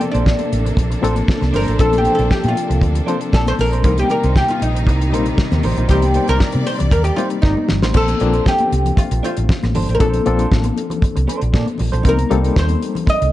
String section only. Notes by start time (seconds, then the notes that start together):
Already playing: C3 F3 A#3 D4 A4
3.86 C3 D#3 G3 D#4
5.89 D5